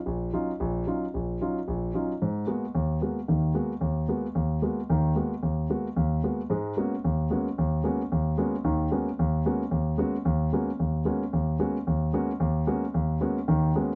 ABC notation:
X:1
M:4/4
L:1/8
Q:"Swing" 1/4=224
K:Abdor
V:1 name="Grand piano"
B,,,2 [G,DEF] z B,,,2 [G,DEF] z | B,,,2 [G,DEF] z B,,,2 [G,DEF] z | A,,2 [A,B,CG] z E,,2 [A,B,CG] z | [E,,E,]2 [A,B,CG] z E,,2 [A,B,CG] z |
E,,2 [A,B,CG] z [E,,E,]2 [A,B,CG] z | E,,2 [A,B,CG] z E,,2 [A,B,CG] z | [K:G#m] [G,,G,]2 [G,A,B,CF] z D,,2 [G,A,B,CF] z | D,,2 [G,A,B,CF] z D,,2 [G,A,B,CF] z |
[D,,D,]2 [G,A,B,CF] z D,,2 [G,A,B,CF] z | D,,2 [G,A,B,CF] z D,,2 [G,A,B,CF] z | D,,2 [G,A,B,CF] z D,,2 [G,A,B,CF] z | D,,2 [G,A,B,CF] z D,,2 [G,A,B,CF] z |
D,,2 [G,A,B,CF] z [D,,D,]2 [G,A,B,CF] z |]